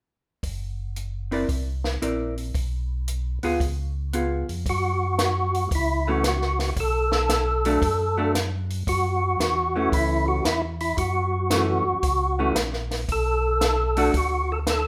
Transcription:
0.43 tonewheel organ F#1, kick, open hi-hat
0.96 closed hi-hat
1.31 hollow-body jazz guitar C4 E4 A#4 D5, open hi-hat
1.49 tonewheel organ C2, kick, open hi-hat
1.84 snare
2.02 tonewheel organ A#1, hollow-body jazz guitar C4 E4 A#4 D5, closed hi-hat
2.38 open hi-hat
2.54 tonewheel organ B1, kick, open hi-hat
3.08 closed hi-hat
3.43 tonewheel organ D2, hollow-body jazz guitar B3 F4 G#4, open hi-hat
3.60 tonewheel organ C#2, kick, open hi-hat
4.13 hollow-body jazz guitar B3 F4 G#4, closed hi-hat
4.49 tonewheel organ F2, open hi-hat
4.66 tonewheel organ F#2 F#4, kick, open hi-hat
5.19 snare, closed hi-hat
5.54 open hi-hat
5.71 tonewheel organ C#2, kick, open hi-hat
5.75 tonewheel organ E4
6.08 hollow-body jazz guitar E3 A3 C#4, tonewheel organ F#4
6.24 tonewheel organ F#4, snare, closed hi-hat
6.42 snare
6.59 tonewheel organ F#4, snare, open hi-hat
6.76 tonewheel organ B1 A4, kick, open hi-hat
7.12 snare
7.29 snare, closed hi-hat
7.65 hollow-body jazz guitar F#3 A3 D4, open hi-hat
7.82 tonewheel organ F#2, kick, open hi-hat
8.17 hollow-body jazz guitar F#3 A3 D4
8.35 snare, closed hi-hat
8.70 open hi-hat
8.87 tonewheel organ F#2 F#4, kick, open hi-hat
9.39 tonewheel organ E2, snare, closed hi-hat
9.76 hollow-body jazz guitar E3 A3 C#4
9.92 tonewheel organ C#2 E4, kick, open hi-hat
10.28 tonewheel organ F#4
10.45 tonewheel organ E2 E4, snare, closed hi-hat
10.80 tonewheel organ E4, open hi-hat
10.98 tonewheel organ F#2 F#4, kick, open hi-hat
11.50 hollow-body jazz guitar E3 A3 C#4, snare, closed hi-hat
11.86 tonewheel organ F#2
12.03 tonewheel organ C#2, kick, open hi-hat
12.39 hollow-body jazz guitar E3 A3 C#4
12.55 tonewheel organ A#1, snare, closed hi-hat
12.73 snare
12.91 snare, open hi-hat
13.09 tonewheel organ B1 A4, kick, open hi-hat
13.61 snare, closed hi-hat
13.97 hollow-body jazz guitar A3 D4 F#4, open hi-hat
14.14 tonewheel organ D2 F#4, kick, open hi-hat
14.52 tonewheel organ A4
14.67 tonewheel organ A4, snare, closed hi-hat

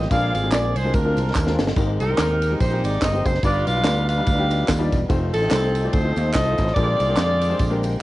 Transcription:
Already playing: tonewheel organ A#3 C4 F4
0.02 snare
0.10 fingered electric bass A#1, upright piano A#2 G#3 C4 D4 F4 A#4, tonewheel organ D3 G#3, saxophone section G#4 D5 F5, kick, ride, tambourine
0.34 fingered electric bass G#1, saxophone section F5, ride, tambourine
0.43 upright piano G#3 C4 D4 F4 A#4
0.52 fingered electric bass A#1, saxophone section D5, snare, clap, ride, tambourine
0.76 fingered electric bass C2, saxophone section C5, ride, tambourine
0.84 upright piano G#3 C4 D4 F4 A#4
0.94 fingered electric bass D2, saxophone section D4 F4 A#4, kick, ride, tambourine
1.05 upright piano G#3 C4 D4 F4 A#4
1.17 fingered electric bass C2, ride, tambourine
1.35 fingered electric bass D#2, kick, snare, clap, tambourine
1.47 upright piano G#3 C4 D4 F4 A#4, snare
1.59 fingered electric bass G1, snare, tambourine
1.68 snare
1.76 fingered electric bass G#1, upright piano G#2 G#3 C4 D#4 G4 A#4, tonewheel organ D#4 G4, kick, tambourine, splash
2.00 fingered electric bass C2, saxophone section D#4 G4 A#4, ride, tambourine
2.10 upright piano G#3 C4 D#4 G4 C5
2.18 fingered electric bass D#2, snare, clap, ride, tambourine
2.42 ride, tambourine
2.51 upright piano G#3 C4 D#4 G4 A#4
2.60 fingered electric bass A#1, saxophone section D#4 G4 C5, kick, ride, tambourine
2.71 upright piano G#3 C4 D#4 G4 A#4
2.84 fingered electric bass G#1, saxophone section D5, ride, tambourine
3.02 fingered electric bass G1, saxophone section D#5, kick, snare, clap, ride, tambourine
3.13 upright piano G#3 C4 D#4 G4 C5
3.26 fingered electric bass F#1, saxophone section C5, kick, ride, tambourine
3.35 snare
3.43 fingered electric bass G1, upright piano G2 G3 D4 D#4 F4 B4, tonewheel organ G3 B3 D4 F4, saxophone section F4 B4 D5, kick, ride, tambourine
3.66 fingered electric bass B1, saxophone section B4 D5 F5, ride, tambourine
3.75 upright piano G3 D4 D#4 F4 B4
3.84 fingered electric bass D2, snare, clap, ride, tambourine
4.08 saxophone section B4 D5 F5, ride, tambourine
4.18 upright piano G3 D4 D#4 F4 B4
4.26 fingered electric bass D2, kick, ride, tambourine
4.38 upright piano G3 D4 D#4 F4 G4
4.50 ride, tambourine
4.68 fingered electric bass D#2, kick, snare, clap, ride, tambourine
4.79 upright piano G3 D4 D#4 F4 D5
4.92 fingered electric bass E1, kick, snare, ride, tambourine
5.09 fingered electric bass F1, tonewheel organ F3 A3 C4, upright piano A3 C4 D#4 F4 C5, kick, ride, tambourine
5.33 fingered electric bass A1, saxophone section C4 D#4 A4, ride, tambourine
5.41 upright piano A3 C4 D#4 F4 A4
5.51 fingered electric bass C2, snare, clap, ride, tambourine
5.75 ride, tambourine
5.83 upright piano A3 C4 D#4 F4 D5
5.91 fingered electric bass D2, saxophone section D#4 A4 C5, kick, ride, tambourine
6.04 upright piano A3 C4 D#4 F4 C5
6.16 fingered electric bass D#2, ride, tambourine
6.33 fingered electric bass C2, saxophone section A4 C5 D#5, kick, snare, clap, ride, tambourine
6.45 upright piano A3 C4 D#4 F4 C5
6.58 fingered electric bass A1, kick, snare, ride, tambourine
6.67 snare
6.74 fingered electric bass A#1, upright piano A#2 G#3 C4 D4 G4 A#4, tonewheel organ D3 G#3 A#3 G5, saxophone section F4 G#4 D5, kick, ride, tambourine
7.00 fingered electric bass C2, ride, tambourine
7.08 upright piano G#3 C4 D4 G4 A#4
7.17 fingered electric bass F2, snare, clap, ride, tambourine
7.42 ride, tambourine
7.49 upright piano G#3 C4 D4 G4 C5
7.59 fingered electric bass A#1, kick, ride, tambourine
7.70 upright piano G#3 C4 D4 G4 A#4
7.83 ride, tambourine

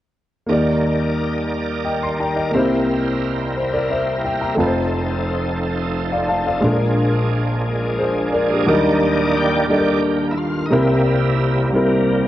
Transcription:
0.47 grand piano D#2 D#3 A#3 D#4 G4, tonewheel organ G3 A#3 D#4 A#4 D5
0.52 grand piano D5
1.85 grand piano D#5 G5
2.03 grand piano C6
2.20 grand piano G5 A#5
2.36 grand piano D#5 G5
2.51 grand piano C2 C3 A#3 D#4 G4, tonewheel organ C4 E4 A#4
2.56 grand piano E4 C5
3.57 grand piano C5
3.73 grand piano A#4 D5
3.91 grand piano C5 E5
4.25 grand piano E5 G5
4.41 grand piano G5 A#5
4.55 grand piano F1 F2 A3 D#4 F4
4.60 tonewheel organ F3 A3 C4 D#4 A4, grand piano B4
4.66 grand piano C5
6.12 grand piano D5 F5
6.28 grand piano F5 A5
6.47 grand piano D5 F5
6.60 grand piano A#1 A#2 G#3 D4 F4, tonewheel organ G#3 A#3 D4 G#4
6.66 grand piano A4
6.72 grand piano A#4
7.99 grand piano G#4 C5
8.33 tonewheel organ D4, grand piano A#4 D5
8.51 grand piano G4 A#4
8.67 grand piano D#2 D#3 F#3 D4 D#4 A#4, tonewheel organ D#3 G3 A#3 D#4 D5
8.73 grand piano G3
9.37 tonewheel organ A#3 G4
9.69 tonewheel organ D#3 G3 D5, grand piano G3 D4 D#4 A4
9.78 grand piano A#4
10.31 tonewheel organ E4
10.37 tonewheel organ F4
10.66 tonewheel organ D#4
10.71 grand piano C2 C3 G3 C4 E4 A#4, tonewheel organ C3 G3 A#3 E4
11.73 grand piano G3 C4 E4 A#4

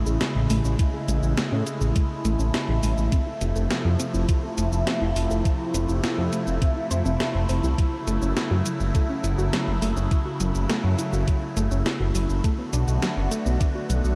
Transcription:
Already playing: analog synth pad C#3 G#3 A3 E4
0.06 detuned saw bass A1, synth arpeggio sound G#4, shaker
0.21 synth arpeggio sound G#3, snare, closed hi-hat, shaker
0.35 detuned saw bass A1
0.50 detuned saw bass A1, synth arpeggio sound A3, open hi-hat, shaker
0.64 detuned saw bass A1, synth arpeggio sound C#4, shaker
0.79 synth arpeggio sound E4, kick, closed hi-hat, shaker
0.94 synth arpeggio sound G#4
1.08 detuned saw bass A1, synth arpeggio sound G#3, closed hi-hat, shaker
1.23 detuned saw bass A1, shaker
1.37 synth arpeggio sound A3, snare, closed hi-hat, shaker
1.52 detuned saw bass A2, synth arpeggio sound C#4
1.67 synth arpeggio sound E4, closed hi-hat, shaker
1.81 detuned saw bass A1, synth arpeggio sound G#4, shaker
1.96 synth arpeggio sound G#3, kick, closed hi-hat, shaker
2.25 detuned saw bass A1, synth arpeggio sound A3, closed hi-hat, shaker
2.39 detuned saw bass A1, synth arpeggio sound C#4, shaker
2.54 synth arpeggio sound E4, snare, closed hi-hat, shaker
2.69 detuned saw bass A1, synth arpeggio sound G#4
2.83 detuned saw bass A1, synth arpeggio sound G#3, open hi-hat, shaker
2.98 detuned saw bass A1, shaker
3.12 analog synth pad C3 F3, synth arpeggio sound C4, kick, closed hi-hat, shaker
3.27 synth arpeggio sound E4
3.41 detuned saw bass F1, synth arpeggio sound F4, closed hi-hat, shaker
3.56 detuned saw bass F1, synth arpeggio sound A4, shaker
3.70 synth arpeggio sound A3, snare, closed hi-hat, shaker
3.85 detuned saw bass F2
3.99 synth arpeggio sound C4, closed hi-hat, shaker
4.14 detuned saw bass F1, synth arpeggio sound E4, shaker
4.29 synth arpeggio sound F4, kick, closed hi-hat, shaker
4.43 synth arpeggio sound A4
4.58 detuned saw bass F1, synth arpeggio sound A3, closed hi-hat, shaker
4.72 detuned saw bass F1, shaker
4.87 synth arpeggio sound C4, snare, closed hi-hat, shaker
5.01 detuned saw bass F1, synth arpeggio sound E4
5.16 detuned saw bass F1, synth arpeggio sound F4, open hi-hat, shaker
5.30 detuned saw bass F1, synth arpeggio sound A4, shaker
5.45 synth arpeggio sound A3, kick, closed hi-hat, shaker
5.74 detuned saw bass F1, synth arpeggio sound C4, closed hi-hat, shaker
5.89 detuned saw bass F1, synth arpeggio sound E4, shaker
6.03 synth arpeggio sound F4, snare, closed hi-hat, shaker
6.18 detuned saw bass F2, synth arpeggio sound A4
6.32 synth arpeggio sound A3, closed hi-hat, shaker
6.47 detuned saw bass F1, shaker
6.62 synth arpeggio sound C4, kick, closed hi-hat, shaker
6.76 synth arpeggio sound E4
6.91 detuned saw bass F2, synth arpeggio sound C5, closed hi-hat, shaker
7.05 detuned saw bass F1, synth arpeggio sound C4, shaker
7.20 synth arpeggio sound A4, snare, closed hi-hat, shaker
7.35 detuned saw bass F1
7.49 detuned saw bass F1, synth arpeggio sound C5, open hi-hat, shaker
7.64 detuned saw bass C2, synth arpeggio sound E4, shaker
7.78 analog synth pad C#3 F#3, synth arpeggio sound F#3, kick, closed hi-hat, shaker
8.07 detuned saw bass F#1, synth arpeggio sound A3, closed hi-hat, shaker
8.22 detuned saw bass F#1, synth arpeggio sound C#4, shaker
8.36 synth arpeggio sound E4, snare, closed hi-hat, shaker
8.51 detuned saw bass F#2, synth arpeggio sound F#4
8.65 synth arpeggio sound F#3, closed hi-hat, shaker
8.80 detuned saw bass F#1, shaker
8.95 synth arpeggio sound A3, kick, closed hi-hat, shaker
9.09 synth arpeggio sound C#4
9.24 detuned saw bass F#1, synth arpeggio sound E4, closed hi-hat, shaker
9.38 detuned saw bass F#1, synth arpeggio sound F#4, shaker
9.53 synth arpeggio sound F#3, snare, closed hi-hat, shaker
9.67 detuned saw bass F#1
9.82 detuned saw bass F#1, synth arpeggio sound A3, open hi-hat, shaker
9.96 detuned saw bass F#1, synth arpeggio sound C#4, shaker
10.11 synth arpeggio sound E4, kick, closed hi-hat, shaker
10.26 synth arpeggio sound F#4
10.40 detuned saw bass F#1, synth arpeggio sound F#3, closed hi-hat, shaker
10.55 detuned saw bass F#1, shaker
10.69 synth arpeggio sound A3, snare, closed hi-hat, shaker
10.84 detuned saw bass F#2, synth arpeggio sound C#4
10.98 synth arpeggio sound E4, closed hi-hat, shaker
11.13 detuned saw bass F#1, synth arpeggio sound F#4, shaker
11.28 synth arpeggio sound F#3, kick, closed hi-hat, shaker
11.56 detuned saw bass F#1, synth arpeggio sound A3, closed hi-hat, shaker
11.71 detuned saw bass F#1, synth arpeggio sound C#4, shaker
11.86 synth arpeggio sound E4, snare, closed hi-hat, shaker
12.00 detuned saw bass F#1, synth arpeggio sound F#4
12.15 detuned saw bass F#1, synth arpeggio sound F#3, open hi-hat, shaker
12.29 detuned saw bass F#1, shaker
12.44 analog synth pad D3 A3 B3 F#4, synth arpeggio sound A3, kick, closed hi-hat, shaker
12.59 synth arpeggio sound B3
12.73 detuned saw bass B1, synth arpeggio sound D4, closed hi-hat, shaker
12.88 detuned saw bass B1, synth arpeggio sound F#4, shaker
13.02 synth arpeggio sound F#3, snare, closed hi-hat, shaker
13.17 detuned saw bass F#1
13.31 synth arpeggio sound A3, closed hi-hat, shaker
13.46 detuned saw bass B1, synth arpeggio sound B3, shaker
13.60 synth arpeggio sound D4, kick, closed hi-hat, shaker
13.75 synth arpeggio sound F#4
13.89 detuned saw bass B1, synth arpeggio sound F#3, closed hi-hat, shaker
14.04 detuned saw bass B1, shaker

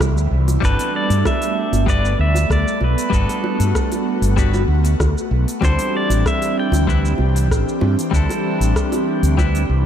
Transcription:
Already playing: analog synth pad E3 G3 C4 E4
0.00 fretless electric bass C2, kick, cross-stick, shaker
0.16 fretless electric bass D2, shaker
0.31 fretless electric bass C2
0.48 open hi-hat, high bongo, shaker
0.60 fretless electric bass G1, clean electric guitar G3 B3 D4 F#4, analog synth pad A3 B3, kick, high bongo, shaker
0.65 clean electric guitar A4, pedal steel guitar B4
0.79 open hi-hat, shaker
0.96 pedal steel guitar D5
1.10 fretless electric bass G2, open hi-hat, shaker
1.25 pedal steel guitar E5, kick, cross-stick, high bongo, shaker
1.42 open hi-hat, shaker
1.72 fretless electric bass G1, open hi-hat, high bongo, shaker
1.86 clean electric guitar G3 B3 D4 F#4 B4, pedal steel guitar D5, kick, shaker
2.05 shaker
2.19 fretless electric bass D2, pedal steel guitar E5
2.35 open hi-hat, high bongo, shaker
2.50 fretless electric bass D2, pedal steel guitar D5, kick, cross-stick, shaker
2.68 shaker
2.81 fretless electric bass B1, pedal steel guitar B4, high bongo
2.98 open hi-hat, shaker
3.10 fretless electric bass G1, clean electric guitar G3 B3 D4 F#4, kick, shaker
3.14 analog synth pad F#4, clean electric guitar A4
3.29 cross-stick, open hi-hat, shaker
3.44 high bongo
3.60 fretless electric bass G2, open hi-hat, shaker
3.75 kick, cross-stick, shaker
3.92 open hi-hat, high bongo, shaker
4.22 fretless electric bass G1, open hi-hat, shaker
4.36 clean electric guitar G3 B3 D4 F#4 B4, kick, shaker
4.54 high bongo, shaker
4.68 fretless electric bass D2
4.85 open hi-hat, shaker
5.00 fretless electric bass D2, kick, cross-stick, high bongo, shaker
5.18 shaker
5.31 fretless electric bass B1
5.48 open hi-hat, shaker
5.61 fretless electric bass D2, analog synth pad E3 C4 D4 G4, clean electric guitar G3 C4 D4 E4, pedal steel guitar C5, kick, high bongo, shaker
5.65 clean electric guitar A4
5.79 open hi-hat, shaker
5.97 pedal steel guitar D5
6.10 fretless electric bass A1, open hi-hat, high bongo, shaker
6.25 pedal steel guitar E5, kick, cross-stick, shaker
6.42 open hi-hat, shaker
6.59 pedal steel guitar G5
6.72 fretless electric bass D2, open hi-hat, high bongo, shaker
6.87 clean electric guitar G3 C4 D4 E4 B4, kick, shaker
7.05 shaker
7.18 fretless electric bass C2, high bongo
7.36 open hi-hat, shaker
7.50 fretless electric bass A1, kick, cross-stick, shaker
7.69 shaker
7.81 fretless electric bass G2, high bongo
7.99 open hi-hat, shaker
8.11 fretless electric bass D2, clean electric guitar G3 C4 D4 E4, kick, shaker
8.16 clean electric guitar A4
8.29 cross-stick, open hi-hat, high bongo, shaker
8.60 fretless electric bass A1, open hi-hat, shaker
8.76 kick, cross-stick, shaker
8.92 open hi-hat, high bongo, shaker
9.23 fretless electric bass D2, open hi-hat, shaker
9.37 clean electric guitar G3 C4 D4 E4 B4, kick, high bongo, shaker
9.55 open hi-hat, shaker
9.69 fretless electric bass C2

